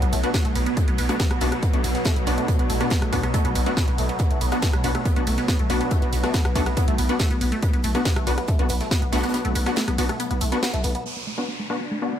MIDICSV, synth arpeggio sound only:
0, 0, Header, 1, 2, 480
1, 0, Start_track
1, 0, Key_signature, 2, "minor"
1, 0, Tempo, 428571
1, 862, Time_signature, 4, 2, 24, 8
1, 13657, End_track
2, 0, Start_track
2, 0, Title_t, "Synth arpeggio sound"
2, 0, Program_c, 0, 84
2, 24, Note_on_c, 0, 59, 74
2, 99, Note_off_c, 0, 59, 0
2, 141, Note_on_c, 0, 57, 80
2, 219, Note_off_c, 0, 57, 0
2, 263, Note_on_c, 0, 59, 76
2, 339, Note_off_c, 0, 59, 0
2, 381, Note_on_c, 0, 59, 88
2, 459, Note_off_c, 0, 59, 0
2, 504, Note_on_c, 0, 57, 82
2, 579, Note_off_c, 0, 57, 0
2, 623, Note_on_c, 0, 59, 74
2, 700, Note_off_c, 0, 59, 0
2, 745, Note_on_c, 0, 59, 79
2, 820, Note_off_c, 0, 59, 0
2, 863, Note_on_c, 0, 57, 90
2, 940, Note_off_c, 0, 57, 0
2, 985, Note_on_c, 0, 59, 77
2, 1060, Note_off_c, 0, 59, 0
2, 1103, Note_on_c, 0, 59, 82
2, 1180, Note_off_c, 0, 59, 0
2, 1224, Note_on_c, 0, 57, 75
2, 1299, Note_off_c, 0, 57, 0
2, 1343, Note_on_c, 0, 59, 83
2, 1420, Note_off_c, 0, 59, 0
2, 1465, Note_on_c, 0, 59, 77
2, 1540, Note_off_c, 0, 59, 0
2, 1582, Note_on_c, 0, 57, 78
2, 1660, Note_off_c, 0, 57, 0
2, 1705, Note_on_c, 0, 59, 78
2, 1780, Note_off_c, 0, 59, 0
2, 1822, Note_on_c, 0, 59, 86
2, 1900, Note_off_c, 0, 59, 0
2, 1944, Note_on_c, 0, 57, 75
2, 2019, Note_off_c, 0, 57, 0
2, 2062, Note_on_c, 0, 59, 79
2, 2139, Note_off_c, 0, 59, 0
2, 2184, Note_on_c, 0, 59, 76
2, 2259, Note_off_c, 0, 59, 0
2, 2302, Note_on_c, 0, 57, 87
2, 2380, Note_off_c, 0, 57, 0
2, 2423, Note_on_c, 0, 59, 80
2, 2499, Note_off_c, 0, 59, 0
2, 2540, Note_on_c, 0, 59, 78
2, 2619, Note_off_c, 0, 59, 0
2, 2662, Note_on_c, 0, 57, 85
2, 2738, Note_off_c, 0, 57, 0
2, 2781, Note_on_c, 0, 59, 92
2, 2859, Note_off_c, 0, 59, 0
2, 2904, Note_on_c, 0, 59, 84
2, 2979, Note_off_c, 0, 59, 0
2, 3022, Note_on_c, 0, 57, 79
2, 3100, Note_off_c, 0, 57, 0
2, 3144, Note_on_c, 0, 59, 74
2, 3219, Note_off_c, 0, 59, 0
2, 3262, Note_on_c, 0, 59, 83
2, 3339, Note_off_c, 0, 59, 0
2, 3384, Note_on_c, 0, 57, 75
2, 3459, Note_off_c, 0, 57, 0
2, 3502, Note_on_c, 0, 59, 80
2, 3580, Note_off_c, 0, 59, 0
2, 3624, Note_on_c, 0, 59, 76
2, 3699, Note_off_c, 0, 59, 0
2, 3741, Note_on_c, 0, 57, 89
2, 3819, Note_off_c, 0, 57, 0
2, 3863, Note_on_c, 0, 59, 79
2, 3939, Note_off_c, 0, 59, 0
2, 3981, Note_on_c, 0, 59, 79
2, 4059, Note_off_c, 0, 59, 0
2, 4103, Note_on_c, 0, 57, 81
2, 4179, Note_off_c, 0, 57, 0
2, 4221, Note_on_c, 0, 59, 82
2, 4299, Note_off_c, 0, 59, 0
2, 4344, Note_on_c, 0, 59, 83
2, 4420, Note_off_c, 0, 59, 0
2, 4463, Note_on_c, 0, 57, 77
2, 4540, Note_off_c, 0, 57, 0
2, 4583, Note_on_c, 0, 59, 83
2, 4659, Note_off_c, 0, 59, 0
2, 4701, Note_on_c, 0, 59, 86
2, 4779, Note_off_c, 0, 59, 0
2, 4822, Note_on_c, 0, 57, 82
2, 4898, Note_off_c, 0, 57, 0
2, 4940, Note_on_c, 0, 59, 81
2, 5018, Note_off_c, 0, 59, 0
2, 5062, Note_on_c, 0, 59, 80
2, 5139, Note_off_c, 0, 59, 0
2, 5181, Note_on_c, 0, 57, 85
2, 5259, Note_off_c, 0, 57, 0
2, 5302, Note_on_c, 0, 59, 75
2, 5379, Note_off_c, 0, 59, 0
2, 5422, Note_on_c, 0, 59, 76
2, 5500, Note_off_c, 0, 59, 0
2, 5544, Note_on_c, 0, 57, 79
2, 5619, Note_off_c, 0, 57, 0
2, 5662, Note_on_c, 0, 59, 82
2, 5740, Note_off_c, 0, 59, 0
2, 5784, Note_on_c, 0, 59, 75
2, 5859, Note_off_c, 0, 59, 0
2, 5903, Note_on_c, 0, 57, 78
2, 5980, Note_off_c, 0, 57, 0
2, 6025, Note_on_c, 0, 59, 74
2, 6100, Note_off_c, 0, 59, 0
2, 6144, Note_on_c, 0, 59, 85
2, 6221, Note_off_c, 0, 59, 0
2, 6267, Note_on_c, 0, 57, 83
2, 6341, Note_off_c, 0, 57, 0
2, 6384, Note_on_c, 0, 59, 74
2, 6461, Note_off_c, 0, 59, 0
2, 6507, Note_on_c, 0, 59, 80
2, 6581, Note_off_c, 0, 59, 0
2, 6625, Note_on_c, 0, 57, 88
2, 6701, Note_off_c, 0, 57, 0
2, 6747, Note_on_c, 0, 59, 81
2, 6821, Note_off_c, 0, 59, 0
2, 6865, Note_on_c, 0, 59, 77
2, 6941, Note_off_c, 0, 59, 0
2, 6986, Note_on_c, 0, 57, 76
2, 7060, Note_off_c, 0, 57, 0
2, 7104, Note_on_c, 0, 59, 88
2, 7181, Note_off_c, 0, 59, 0
2, 7224, Note_on_c, 0, 59, 79
2, 7299, Note_off_c, 0, 59, 0
2, 7344, Note_on_c, 0, 57, 78
2, 7420, Note_off_c, 0, 57, 0
2, 7465, Note_on_c, 0, 59, 79
2, 7540, Note_off_c, 0, 59, 0
2, 7583, Note_on_c, 0, 59, 85
2, 7660, Note_off_c, 0, 59, 0
2, 7705, Note_on_c, 0, 57, 81
2, 7780, Note_off_c, 0, 57, 0
2, 7824, Note_on_c, 0, 59, 81
2, 7900, Note_off_c, 0, 59, 0
2, 7944, Note_on_c, 0, 59, 78
2, 8020, Note_off_c, 0, 59, 0
2, 8062, Note_on_c, 0, 57, 86
2, 8140, Note_off_c, 0, 57, 0
2, 8183, Note_on_c, 0, 59, 83
2, 8259, Note_off_c, 0, 59, 0
2, 8301, Note_on_c, 0, 59, 80
2, 8379, Note_off_c, 0, 59, 0
2, 8422, Note_on_c, 0, 57, 85
2, 8499, Note_off_c, 0, 57, 0
2, 8539, Note_on_c, 0, 59, 90
2, 8618, Note_off_c, 0, 59, 0
2, 8662, Note_on_c, 0, 59, 80
2, 8738, Note_off_c, 0, 59, 0
2, 8781, Note_on_c, 0, 57, 81
2, 8859, Note_off_c, 0, 57, 0
2, 8903, Note_on_c, 0, 59, 75
2, 8979, Note_off_c, 0, 59, 0
2, 9021, Note_on_c, 0, 59, 82
2, 9099, Note_off_c, 0, 59, 0
2, 9142, Note_on_c, 0, 57, 79
2, 9218, Note_off_c, 0, 57, 0
2, 9261, Note_on_c, 0, 59, 77
2, 9339, Note_off_c, 0, 59, 0
2, 9382, Note_on_c, 0, 59, 78
2, 9458, Note_off_c, 0, 59, 0
2, 9501, Note_on_c, 0, 57, 86
2, 9579, Note_off_c, 0, 57, 0
2, 9623, Note_on_c, 0, 59, 79
2, 9699, Note_off_c, 0, 59, 0
2, 9742, Note_on_c, 0, 59, 81
2, 9820, Note_off_c, 0, 59, 0
2, 9863, Note_on_c, 0, 57, 76
2, 9939, Note_off_c, 0, 57, 0
2, 9981, Note_on_c, 0, 59, 84
2, 10059, Note_off_c, 0, 59, 0
2, 10101, Note_on_c, 0, 59, 78
2, 10178, Note_off_c, 0, 59, 0
2, 10219, Note_on_c, 0, 57, 79
2, 10298, Note_off_c, 0, 57, 0
2, 10341, Note_on_c, 0, 59, 78
2, 10418, Note_off_c, 0, 59, 0
2, 10459, Note_on_c, 0, 59, 85
2, 10538, Note_off_c, 0, 59, 0
2, 10581, Note_on_c, 0, 57, 80
2, 10658, Note_off_c, 0, 57, 0
2, 10699, Note_on_c, 0, 59, 82
2, 10778, Note_off_c, 0, 59, 0
2, 10821, Note_on_c, 0, 59, 77
2, 10898, Note_off_c, 0, 59, 0
2, 10941, Note_on_c, 0, 57, 86
2, 11019, Note_off_c, 0, 57, 0
2, 11062, Note_on_c, 0, 59, 76
2, 11139, Note_off_c, 0, 59, 0
2, 11181, Note_on_c, 0, 59, 75
2, 11259, Note_off_c, 0, 59, 0
2, 11305, Note_on_c, 0, 57, 80
2, 11380, Note_off_c, 0, 57, 0
2, 11422, Note_on_c, 0, 59, 87
2, 11500, Note_off_c, 0, 59, 0
2, 11543, Note_on_c, 0, 59, 80
2, 11619, Note_off_c, 0, 59, 0
2, 11662, Note_on_c, 0, 57, 82
2, 11740, Note_off_c, 0, 57, 0
2, 11784, Note_on_c, 0, 59, 81
2, 11860, Note_off_c, 0, 59, 0
2, 11903, Note_on_c, 0, 59, 85
2, 11980, Note_off_c, 0, 59, 0
2, 12024, Note_on_c, 0, 57, 81
2, 12099, Note_off_c, 0, 57, 0
2, 12144, Note_on_c, 0, 59, 76
2, 12220, Note_off_c, 0, 59, 0
2, 12265, Note_on_c, 0, 59, 80
2, 12340, Note_off_c, 0, 59, 0
2, 12383, Note_on_c, 0, 59, 84
2, 12460, Note_off_c, 0, 59, 0
2, 12505, Note_on_c, 0, 59, 78
2, 12580, Note_off_c, 0, 59, 0
2, 12624, Note_on_c, 0, 57, 76
2, 12701, Note_off_c, 0, 57, 0
2, 12746, Note_on_c, 0, 59, 71
2, 12820, Note_off_c, 0, 59, 0
2, 12864, Note_on_c, 0, 59, 80
2, 12941, Note_off_c, 0, 59, 0
2, 12986, Note_on_c, 0, 57, 72
2, 13060, Note_off_c, 0, 57, 0
2, 13103, Note_on_c, 0, 59, 76
2, 13180, Note_off_c, 0, 59, 0
2, 13225, Note_on_c, 0, 59, 74
2, 13300, Note_off_c, 0, 59, 0
2, 13343, Note_on_c, 0, 57, 83
2, 13420, Note_off_c, 0, 57, 0
2, 13465, Note_on_c, 0, 59, 74
2, 13540, Note_off_c, 0, 59, 0
2, 13585, Note_on_c, 0, 59, 75
2, 13657, Note_off_c, 0, 59, 0
2, 13657, End_track
0, 0, End_of_file